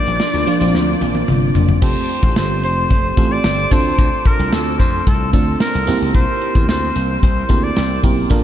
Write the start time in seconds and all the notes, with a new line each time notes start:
Already playing: F3 A#3 D4 F4 D5
0.07 A#1, closed hi-hat
0.20 snare
0.34 D2, closed hi-hat
0.47 F3 A#3 D4 F4, closed hi-hat
0.60 A#1 F3 A#3 C4 F4, closed hi-hat
0.68 D4
0.74 D2, snare
1.01 A#1, high tom
1.15 high tom
1.28 G1, mid tom
1.55 F#1, floor tom
1.69 floor tom
1.82 F1 A3 C4 F4 G4 A4 C5, kick, crash
2.09 closed hi-hat
2.23 A1, kick
2.36 G1 C5, snare, closed hi-hat, tambourine
2.63 F1 C5, closed hi-hat
2.90 F1, kick, closed hi-hat
3.17 A1 A3 C4 F4 G4 A4, kick, closed hi-hat
3.32 D5
3.44 G1, snare, closed hi-hat, tambourine
3.71 D2 A3 C4 D4 F4 A4 C5, kick, open hi-hat
3.99 D2, kick, closed hi-hat
4.25 A#4, kick, closed hi-hat
4.39 C2
4.53 D2 A4, snare, closed hi-hat, tambourine
4.79 F2 C5, kick, closed hi-hat
5.07 C2 A4, kick, closed hi-hat
5.33 D2 A3 C4 D4 F4 A4, kick, closed hi-hat
5.60 A#4, snare, closed hi-hat, tambourine
5.75 C2
5.87 C2 A#3 C4 E4 G4 A#4, open hi-hat
6.02 C#2
6.14 C2 C5, kick, closed hi-hat
6.42 closed hi-hat
6.55 E2, kick
6.69 D2 C5, snare, closed hi-hat, tambourine
6.96 C2, closed hi-hat
7.22 C2 C5, kick, closed hi-hat
7.49 D2 A#3 C4 E4 G4 A#4, kick, closed hi-hat
7.64 D5
7.77 C2, snare, closed hi-hat, tambourine
8.03 B1 A#3 C4 E4 G4 A#4, kick, open hi-hat
8.30 A#1 A#3 D4 F4 A4 A#4, kick, closed hi-hat